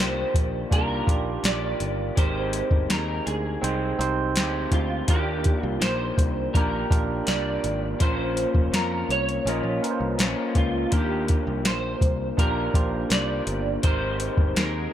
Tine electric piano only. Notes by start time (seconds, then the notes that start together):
Already playing: A#3 D4 F4 G4
0.70 A#3 D4 F4 G4
1.06 A#3 D4 F4 G4
2.16 C4 D#4 G4 A#4
3.62 C4 D#4 C5 G5
3.98 C4 D#4 G4 C5
5.08 D4 F4 G4 A#4
6.55 D4 F4 G4 A#4
6.90 D4 F4 G4 A#4
8.00 C#4 F4 A#4 C5
9.46 C#4 F4 A#4 D#5
9.82 C#4 F4 A#4 B4
9.91 C5
10.91 D4 F4 G4 A#4
12.37 D4 F4 G4 A#4
12.74 D4 F4 G4 C5
13.84 C4 D#4 G4 A#4